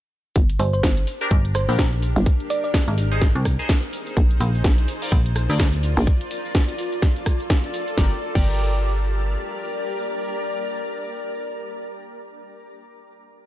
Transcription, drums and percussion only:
0.36 kick loud
0.36 closed hi-hat medium
0.36 cabasa soft
0.50 closed hi-hat medium
0.60 open hi-hat loud
0.60 cabasa medium
0.73 cabasa soft
0.83 kick loud
0.83 snare loud
0.83 closed hi-hat medium
0.83 cabasa soft
0.97 closed hi-hat medium
1.07 open hi-hat medium
1.07 cabasa medium
1.21 closed hi-hat soft
1.21 cabasa soft
1.31 kick loud
1.31 closed hi-hat medium
1.31 cabasa soft
1.45 closed hi-hat medium
1.55 cross-stick medium
1.55 open hi-hat loud
1.55 cabasa medium
1.69 cabasa soft
1.79 kick loud
1.79 snare loud
1.79 closed hi-hat medium
1.79 cabasa soft
1.93 closed hi-hat medium
2.03 open hi-hat medium
2.03 cabasa medium
2.16 closed hi-hat soft
2.16 cabasa soft
2.26 kick loud
2.26 closed hi-hat medium
2.26 cabasa soft
2.40 closed hi-hat medium
2.50 open hi-hat loud
2.50 cabasa medium
2.64 cabasa soft
2.74 kick loud
2.74 snare loud
2.74 closed hi-hat medium
2.74 cabasa soft
2.88 closed hi-hat medium
2.98 open hi-hat loud
2.98 cabasa medium
3.12 closed hi-hat soft
3.12 cabasa soft
3.22 kick loud
3.22 snare medium
3.22 closed hi-hat medium
3.22 cabasa soft
3.35 closed hi-hat medium
3.45 kick medium
3.45 cross-stick medium
3.45 open hi-hat loud
3.45 cabasa medium
3.59 cabasa soft
3.69 kick loud
3.69 snare loud
3.69 closed hi-hat medium
3.69 cabasa soft
3.83 closed hi-hat medium
3.93 open hi-hat loud
3.93 cabasa medium
4.07 closed hi-hat soft
4.07 cabasa soft
4.17 kick loud
4.17 closed hi-hat medium
4.17 cabasa soft
4.31 closed hi-hat medium
4.41 open hi-hat loud
4.41 cabasa medium
4.54 cabasa soft
4.64 kick loud
4.64 snare loud
4.64 closed hi-hat medium
4.64 cabasa soft
4.78 closed hi-hat soft
4.88 open hi-hat loud
4.88 cabasa medium
5.02 closed hi-hat soft
5.02 cabasa soft
5.12 kick loud
5.12 closed hi-hat medium
5.12 cabasa soft
5.26 closed hi-hat medium
5.36 cross-stick medium
5.36 open hi-hat loud
5.36 cabasa medium
5.50 cabasa soft
5.59 kick loud
5.59 snare loud
5.59 closed hi-hat medium
5.59 cabasa soft
5.73 closed hi-hat medium
5.83 open hi-hat loud
5.83 cabasa medium
5.97 closed hi-hat soft
5.97 cabasa soft
6.07 kick loud
6.07 closed hi-hat medium
6.07 cabasa soft
6.21 closed hi-hat medium
6.31 open hi-hat loud
6.31 cabasa medium
6.45 cabasa soft
6.55 kick loud
6.55 snare loud
6.55 closed hi-hat medium
6.55 cabasa soft
6.69 closed hi-hat medium
6.79 open hi-hat loud
6.79 cabasa medium
6.92 closed hi-hat soft
6.92 cabasa soft
7.02 kick loud
7.02 snare medium
7.02 closed hi-hat medium
7.02 cabasa soft
7.16 closed hi-hat medium
7.26 kick medium
7.26 cross-stick medium
7.26 open hi-hat loud
7.26 cabasa medium
7.40 closed hi-hat soft
7.40 cabasa soft
7.50 kick loud
7.50 snare loud
7.50 closed hi-hat medium
7.50 cabasa soft
7.64 closed hi-hat medium
7.74 open hi-hat loud
7.74 cabasa medium
7.88 closed hi-hat soft
7.88 cabasa soft
7.98 kick loud
7.98 snare medium
8.35 kick loud
8.35 crash medium

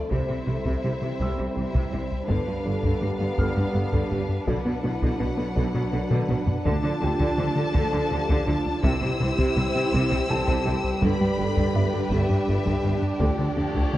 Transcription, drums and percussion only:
0.11 taiko medium
0.65 taiko medium
1.20 taiko medium
1.75 taiko medium
2.29 taiko medium
2.83 taiko medium
3.38 taiko medium
3.93 taiko medium
4.47 taiko medium
5.02 taiko medium
5.56 taiko medium
6.11 taiko mid medium
6.29 taiko low-mid medium
6.47 taiko low medium
6.66 taiko medium
7.20 taiko medium
7.75 taiko medium
8.29 taiko medium
8.84 taiko medium
9.39 taiko medium
9.93 taiko medium
10.48 taiko medium
11.02 taiko medium
11.57 taiko medium
12.11 taiko medium
12.66 taiko medium
13.20 taiko medium
13.75 taiko medium

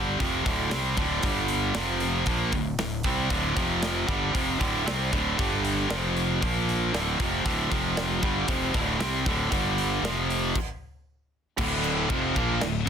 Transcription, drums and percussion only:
0.20 kick loud
0.20 open hi-hat medium
0.46 kick loud
0.46 open hi-hat medium
0.71 snare loud
0.71 open hi-hat medium
0.97 kick loud
0.97 open hi-hat medium
1.23 kick medium
1.23 open hi-hat medium
1.48 open hi-hat medium
1.75 snare loud
1.75 open hi-hat medium
2.00 open hi-hat medium
2.26 kick medium
2.26 open hi-hat medium
2.52 kick medium
2.52 open hi-hat medium
2.79 snare loud
2.79 open hi-hat medium
3.03 kick medium
3.03 open hi-hat medium
3.30 kick loud
3.30 open hi-hat medium
3.57 kick medium
3.57 open hi-hat soft
3.82 snare loud
3.82 open hi-hat medium
4.08 kick loud
4.08 open hi-hat soft
4.35 kick medium
4.35 open hi-hat medium
4.61 kick loud
4.61 open hi-hat medium
4.88 snare loud
4.88 open hi-hat medium
5.13 kick medium
5.13 open hi-hat soft
5.39 kick loud
5.39 open hi-hat medium
5.65 open hi-hat medium
5.90 snare loud
5.90 open hi-hat medium
6.17 open hi-hat soft
6.42 kick loud
6.42 open hi-hat medium
6.69 open hi-hat medium
6.94 snare loud
6.94 open hi-hat medium
7.20 kick medium
7.20 open hi-hat medium
7.46 kick loud
7.46 open hi-hat medium
7.72 kick medium
7.72 open hi-hat soft
7.97 snare loud
7.97 open hi-hat medium
8.23 kick medium
8.23 open hi-hat soft
8.48 kick loud
8.48 open hi-hat medium
8.74 kick loud
8.74 open hi-hat medium
9.00 snare loud
9.00 open hi-hat medium
9.26 kick loud
9.26 open hi-hat soft
9.52 kick loud
9.52 open hi-hat medium
9.78 open hi-hat medium
10.05 snare loud
10.05 open hi-hat medium
10.30 open hi-hat medium
10.56 kick medium
10.56 crash medium
11.58 kick loud
11.58 crash loud
11.58 crash medium
11.84 crash medium
12.10 kick loud
12.10 crash medium
12.36 kick loud
12.36 crash medium
12.61 snare loud
12.61 crash medium

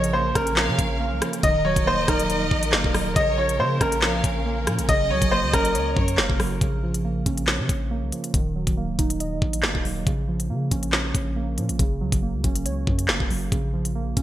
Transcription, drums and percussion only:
0.04 closed hi-hat medium
0.35 kick medium
0.35 cross-stick medium
0.35 closed hi-hat medium
0.47 closed hi-hat medium
0.57 snare loud
0.57 clap loud
0.79 kick loud
0.79 closed hi-hat medium
1.22 cross-stick loud
1.22 closed hi-hat medium
1.33 closed hi-hat medium
1.43 kick loud
1.43 closed hi-hat medium
1.76 kick medium
1.76 closed hi-hat medium
2.08 kick medium
2.08 cross-stick medium
2.08 closed hi-hat medium
2.19 closed hi-hat medium
2.30 closed hi-hat medium
2.51 kick loud
2.63 closed hi-hat medium
2.72 snare loud
2.72 clap medium
2.84 kick medium
2.94 cross-stick loud
2.94 open hi-hat medium
3.16 kick loud
3.16 closed hi-hat medium
3.49 closed hi-hat medium
3.81 kick medium
3.81 cross-stick medium
3.81 closed hi-hat medium
3.92 closed hi-hat medium
4.02 snare loud
4.02 clap loud
4.24 kick loud
4.24 closed hi-hat medium
4.67 cross-stick loud
4.67 closed hi-hat medium
4.79 closed hi-hat medium
4.89 kick loud
4.89 closed hi-hat medium
5.22 kick medium
5.22 closed hi-hat medium
5.53 kick medium
5.53 cross-stick medium
5.53 closed hi-hat medium
5.65 closed hi-hat medium
5.75 closed hi-hat medium
5.97 kick loud
6.08 closed hi-hat medium
6.18 snare loud
6.18 clap medium
6.30 kick medium
6.40 cross-stick medium
6.40 open hi-hat medium
6.61 kick loud
6.61 closed hi-hat medium
6.94 closed hi-hat medium
7.26 kick medium
7.26 closed hi-hat medium
7.37 closed hi-hat medium
7.47 snare loud
7.47 clap loud
7.69 kick loud
7.69 closed hi-hat medium
8.12 closed hi-hat medium
8.24 closed hi-hat medium
8.34 kick loud
8.34 closed hi-hat medium
8.67 kick medium
8.67 closed hi-hat medium
8.99 kick medium
8.99 closed hi-hat medium
9.10 closed hi-hat medium
9.20 closed hi-hat medium
9.42 kick loud
9.53 closed hi-hat medium
9.63 snare loud
9.63 clap medium
9.75 kick medium
9.85 open hi-hat medium
10.07 kick loud
10.07 closed hi-hat medium
10.40 closed hi-hat medium
10.71 kick medium
10.71 closed hi-hat medium
10.83 closed hi-hat medium
10.93 snare loud
10.93 clap medium
11.15 kick medium
11.15 closed hi-hat medium
11.58 closed hi-hat medium
11.69 closed hi-hat medium
11.79 kick loud
11.79 closed hi-hat medium
12.12 kick medium
12.12 closed hi-hat medium
12.44 kick medium
12.44 closed hi-hat medium
12.55 closed hi-hat medium
12.66 closed hi-hat medium
12.87 kick medium
12.99 closed hi-hat medium
13.08 snare loud
13.08 clap medium
13.20 kick medium
13.30 open hi-hat medium
13.52 kick loud
13.52 closed hi-hat medium
13.85 closed hi-hat medium
14.17 kick medium
14.17 closed hi-hat medium

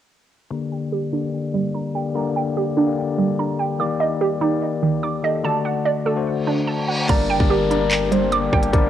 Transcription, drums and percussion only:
7.09 kick loud
7.09 closed hi-hat medium
7.09 crash loud
7.40 kick loud
7.71 closed hi-hat medium
7.91 clap loud
7.91 closed hi-hat medium
8.12 closed hi-hat medium
8.32 closed hi-hat medium
8.53 kick medium
8.53 cross-stick medium
8.63 closed hi-hat medium
8.73 kick loud
8.73 closed hi-hat medium

